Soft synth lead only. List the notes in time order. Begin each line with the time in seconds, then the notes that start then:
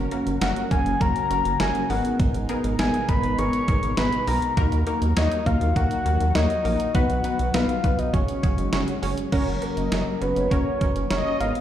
0.41 F#5
0.71 G#5
1.01 A#5
1.60 G#5
1.90 F#5
2.79 G#5
3.09 B5
3.38 C#6
3.98 B5
4.28 A#5
5.17 D#5
5.46 F5
5.76 F#5
6.35 D#5
6.95 F#5
7.54 F5
7.99 D#5
8.14 C#5
9.63 A#4
10.22 B4
10.51 C#5
11.11 C#5
11.40 F5